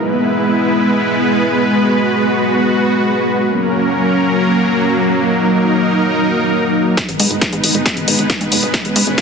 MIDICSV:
0, 0, Header, 1, 4, 480
1, 0, Start_track
1, 0, Key_signature, 5, "minor"
1, 0, Tempo, 441176
1, 1829, Time_signature, 4, 2, 24, 8
1, 10025, End_track
2, 0, Start_track
2, 0, Title_t, "Supersaw synth"
2, 0, Program_c, 0, 81
2, 0, Note_on_c, 0, 56, 80
2, 0, Note_on_c, 0, 59, 72
2, 0, Note_on_c, 0, 64, 74
2, 0, Note_on_c, 0, 71, 89
2, 1808, Note_off_c, 0, 64, 0
2, 1830, Note_on_c, 0, 66, 76
2, 3710, Note_off_c, 0, 56, 0
2, 3710, Note_off_c, 0, 59, 0
2, 3710, Note_off_c, 0, 71, 0
2, 3730, Note_off_c, 0, 66, 0
2, 3747, Note_on_c, 0, 58, 77
2, 3747, Note_on_c, 0, 61, 77
2, 3748, Note_on_c, 0, 54, 83
2, 3748, Note_on_c, 0, 70, 92
2, 5649, Note_off_c, 0, 61, 0
2, 5649, Note_off_c, 0, 70, 0
2, 5667, Note_on_c, 0, 63, 75
2, 5667, Note_on_c, 0, 70, 91
2, 7549, Note_off_c, 0, 58, 0
2, 7550, Note_off_c, 0, 54, 0
2, 7568, Note_off_c, 0, 70, 0
2, 7569, Note_off_c, 0, 63, 0
2, 7588, Note_on_c, 0, 56, 85
2, 7588, Note_on_c, 0, 59, 78
2, 7588, Note_on_c, 0, 63, 75
2, 7588, Note_on_c, 0, 71, 89
2, 9489, Note_off_c, 0, 63, 0
2, 9508, Note_on_c, 0, 61, 78
2, 10025, Note_off_c, 0, 56, 0
2, 10025, Note_off_c, 0, 59, 0
2, 10025, Note_off_c, 0, 61, 0
2, 10025, Note_off_c, 0, 71, 0
2, 10025, End_track
3, 0, Start_track
3, 0, Title_t, "Analog synth bass"
3, 0, Program_c, 1, 38
3, 7708, Note_on_c, 1, 32, 88
3, 7795, Note_off_c, 1, 32, 0
3, 7827, Note_on_c, 1, 44, 97
3, 7914, Note_off_c, 1, 44, 0
3, 7947, Note_on_c, 1, 32, 90
3, 8034, Note_off_c, 1, 32, 0
3, 8186, Note_on_c, 1, 44, 91
3, 8274, Note_off_c, 1, 44, 0
3, 8307, Note_on_c, 1, 32, 94
3, 8394, Note_off_c, 1, 32, 0
3, 8428, Note_on_c, 1, 32, 94
3, 8514, Note_off_c, 1, 32, 0
3, 8667, Note_on_c, 1, 32, 84
3, 8754, Note_off_c, 1, 32, 0
3, 8787, Note_on_c, 1, 32, 100
3, 8874, Note_off_c, 1, 32, 0
3, 8909, Note_on_c, 1, 32, 91
3, 8995, Note_off_c, 1, 32, 0
3, 9147, Note_on_c, 1, 44, 89
3, 9234, Note_off_c, 1, 44, 0
3, 9267, Note_on_c, 1, 30, 103
3, 9354, Note_off_c, 1, 30, 0
3, 9387, Note_on_c, 1, 32, 92
3, 9474, Note_off_c, 1, 32, 0
3, 9627, Note_on_c, 1, 32, 85
3, 9714, Note_off_c, 1, 32, 0
3, 9746, Note_on_c, 1, 44, 99
3, 9834, Note_off_c, 1, 44, 0
3, 9867, Note_on_c, 1, 32, 87
3, 9954, Note_off_c, 1, 32, 0
3, 10025, End_track
4, 0, Start_track
4, 0, Title_t, "Drums"
4, 7587, Note_on_c, 9, 36, 107
4, 7590, Note_on_c, 9, 38, 51
4, 7590, Note_on_c, 9, 42, 67
4, 7696, Note_off_c, 9, 36, 0
4, 7699, Note_off_c, 9, 38, 0
4, 7699, Note_off_c, 9, 42, 0
4, 7710, Note_on_c, 9, 42, 39
4, 7818, Note_off_c, 9, 42, 0
4, 7829, Note_on_c, 9, 46, 107
4, 7938, Note_off_c, 9, 46, 0
4, 7948, Note_on_c, 9, 42, 39
4, 8057, Note_off_c, 9, 42, 0
4, 8067, Note_on_c, 9, 36, 113
4, 8069, Note_on_c, 9, 38, 48
4, 8069, Note_on_c, 9, 42, 65
4, 8176, Note_off_c, 9, 36, 0
4, 8177, Note_off_c, 9, 38, 0
4, 8177, Note_off_c, 9, 42, 0
4, 8188, Note_on_c, 9, 42, 38
4, 8297, Note_off_c, 9, 42, 0
4, 8308, Note_on_c, 9, 46, 100
4, 8417, Note_off_c, 9, 46, 0
4, 8428, Note_on_c, 9, 42, 41
4, 8537, Note_off_c, 9, 42, 0
4, 8547, Note_on_c, 9, 36, 113
4, 8549, Note_on_c, 9, 38, 50
4, 8549, Note_on_c, 9, 42, 67
4, 8656, Note_off_c, 9, 36, 0
4, 8657, Note_off_c, 9, 38, 0
4, 8657, Note_off_c, 9, 42, 0
4, 8669, Note_on_c, 9, 42, 39
4, 8777, Note_off_c, 9, 42, 0
4, 8789, Note_on_c, 9, 46, 101
4, 8897, Note_off_c, 9, 46, 0
4, 8909, Note_on_c, 9, 42, 40
4, 9018, Note_off_c, 9, 42, 0
4, 9027, Note_on_c, 9, 36, 118
4, 9028, Note_on_c, 9, 38, 57
4, 9028, Note_on_c, 9, 42, 69
4, 9136, Note_off_c, 9, 36, 0
4, 9136, Note_off_c, 9, 38, 0
4, 9136, Note_off_c, 9, 42, 0
4, 9148, Note_on_c, 9, 42, 39
4, 9257, Note_off_c, 9, 42, 0
4, 9267, Note_on_c, 9, 46, 98
4, 9376, Note_off_c, 9, 46, 0
4, 9387, Note_on_c, 9, 42, 40
4, 9496, Note_off_c, 9, 42, 0
4, 9506, Note_on_c, 9, 36, 117
4, 9507, Note_on_c, 9, 38, 62
4, 9507, Note_on_c, 9, 42, 68
4, 9615, Note_off_c, 9, 36, 0
4, 9616, Note_off_c, 9, 38, 0
4, 9616, Note_off_c, 9, 42, 0
4, 9628, Note_on_c, 9, 42, 39
4, 9737, Note_off_c, 9, 42, 0
4, 9747, Note_on_c, 9, 46, 115
4, 9856, Note_off_c, 9, 46, 0
4, 9868, Note_on_c, 9, 42, 37
4, 9977, Note_off_c, 9, 42, 0
4, 9986, Note_on_c, 9, 36, 113
4, 9987, Note_on_c, 9, 38, 59
4, 9987, Note_on_c, 9, 42, 66
4, 10025, Note_off_c, 9, 36, 0
4, 10025, Note_off_c, 9, 38, 0
4, 10025, Note_off_c, 9, 42, 0
4, 10025, End_track
0, 0, End_of_file